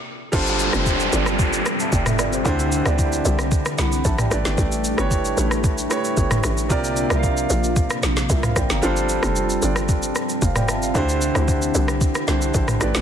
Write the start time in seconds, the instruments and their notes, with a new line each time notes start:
0.32 log drum bass G1, grand piano G3 D4 F4 A4 C5, string machine G3 C4 F4, kick, crash, downlifter, shaker
0.47 shaker
0.60 shaker
0.72 log drum bass F1, grand piano G3 D4 F4 A4 C5, cross-stick, shaker
0.86 kick, shaker
1.00 shaker
1.12 log drum bass G1, grand piano G3 D4 F4 A4 D5, shaker
1.26 cross-stick, shaker
1.39 kick, shaker
1.53 shaker
1.66 cross-stick, shaker
1.80 grand piano E5 A5, shaker
1.92 log drum bass F1, grand piano D5 G5, kick, shaker
2.06 grand piano A4 E5, cross-stick, mid tom, shaker
2.19 log drum bass G1, grand piano A4 D5, cross-stick, shaker
2.33 grand piano G4 C5, shaker
2.44 log drum bass D2, grand piano D3 D4 E4 G4 C5, string machine D3 E4 G4, kick, shaker
2.59 shaker
2.72 shaker
2.85 log drum bass D2, grand piano D3 D4 E4 G4 D5, cross-stick, shaker
2.99 kick, shaker
3.12 shaker
3.25 log drum bass C2, shaker
3.39 cross-stick, shaker
3.52 kick, shaker
3.66 cross-stick, shaker
3.78 log drum bass C2, grand piano F#5 B5, snare, shaker
3.92 shaker
4.05 log drum bass A#1, grand piano E5 A5, kick, shaker
4.18 grand piano D5 G5, cross-stick, mid tom, shaker
4.30 log drum bass A1, grand piano A3 E4 G4 B4 D5, string machine A3 D4, cross-stick, shaker
4.45 log drum bass G1, snare, shaker
4.58 log drum bass A1, kick, shaker
4.72 shaker
4.84 shaker
4.97 log drum bass G1, grand piano A3 E4 G4 B4 C#5, cross-stick, shaker
5.11 kick, shaker
5.25 shaker
5.36 log drum bass A1, grand piano A3 E4 G4 B4 C#5, shaker
5.51 cross-stick, shaker
5.64 kick, shaker
5.78 shaker
5.89 grand piano A3 E4 G4 B4 C#5, cross-stick, shaker
6.05 shaker
6.17 log drum bass G1, kick, shaker
6.31 cross-stick, mid tom, shaker
6.44 log drum bass A1, cross-stick, shaker
6.58 shaker
6.69 log drum bass C2, grand piano C3 C4 F4 A#4 D5, string machine C3 A#3 F4, kick, shaker
6.84 shaker
6.97 shaker
7.09 log drum bass C2, grand piano C3 C4 F4 A#4 E5, cross-stick, shaker
7.19 grand piano F5
7.23 kick, shaker
7.37 shaker
7.50 log drum bass A#1, shaker
7.64 shaker
7.76 kick, shaker
7.90 cross-stick, shaker
8.03 log drum bass A#1, snare, shaker
8.17 snare, shaker
8.30 log drum bass C2, grand piano A#4 E5, kick, shaker
8.43 grand piano C5 F5, cross-stick, mid tom, shaker
8.56 log drum bass A#1, grand piano D5 G5, kick, cross-stick, shaker
8.70 log drum bass G1, grand piano F5 A#5, snare, shaker
8.82 log drum bass G1, grand piano G3 D4 F4 A4 C5, string machine G3 C4, shaker
8.97 shaker
9.09 shaker
9.22 log drum bass F1, grand piano G3 D4 F4 A4 C5, cross-stick, shaker
9.36 shaker
9.50 shaker
9.61 log drum bass G1, grand piano G3 D4 F4 A4 D5, shaker
9.76 cross-stick, shaker
9.89 kick, shaker
10.03 shaker
10.16 cross-stick, shaker
10.29 shaker
10.42 log drum bass F1, grand piano C5 F5, kick, shaker
10.56 grand piano D5 G5, cross-stick, mid tom, shaker
10.68 log drum bass G1, grand piano E5 A5, cross-stick, shaker
10.82 grand piano C5 F5, shaker
10.94 log drum bass D2, grand piano D3 D4 E4 G4 C5, string machine D3 E4 G4, kick, shaker
11.09 shaker
11.22 shaker
11.34 log drum bass D2, grand piano D3 D4 E4 G4 C5, cross-stick, shaker
11.48 kick, shaker
11.62 shaker
11.75 log drum bass C2, shaker
11.88 cross-stick, shaker
12.01 kick, shaker
12.15 cross-stick, shaker
12.27 log drum bass C2, grand piano D3 D4 E4 G4 C5, snare, shaker
12.42 shaker
12.54 log drum bass A#1, kick, shaker
12.68 cross-stick, mid tom, shaker
12.80 log drum bass A1, grand piano A3 E4 G4 B4 D5, string machine A3 D4, cross-stick, shaker
12.95 log drum bass G1, snare, shaker